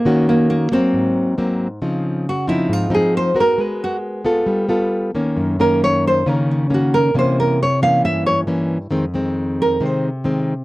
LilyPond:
<<
  \new Staff \with { instrumentName = "Nylon-string guitar" } { \time 4/4 \key des \major \tempo 4 = 135 bes8 bes8 bes8 c'4. r4 | r4 ges'8 fes'8 f'8 aes'8 c''8 bes'8 | ces''8 ges'8 r2. | r8 bes'8 des''8 c''8 bes'8 des'8 ges'8 bes'8 |
c''8 bes'8 des''8 f''8 e''8 des''8 r4 | r4. bes'8 c''8 r4. | }
  \new Staff \with { instrumentName = "Nylon-string guitar" } { \time 4/4 \key des \major << { <bes des' ges'>4. <ges bes c'>4. <ges bes c'>8 r8 | <f c' ees'>4 r8 <f c' ees'>4 <f c' ees'>4 <ces' ges' bes'>8~ | <ces' ges' bes'>4. <ces' f' a'>4 <b f' a'>4 <ees bes des'>8~ | <ees bes des'>8 <ees bes des'>4. <ees bes des'>4 <ees bes des'>4 |
<e bes des'>4 r8 <e bes des'>4. <e bes des'>8 r8 | <ees aes c'>8 <ees aes c'>4. <ees aes c'>8 r8 <ees aes c'>8 r8 | } \\ { ees2 aes,2 | des2 aes,2 | aes2 g2 | ges,2 des2 |
c2 g,2 | f,2 c2 | } >> }
>>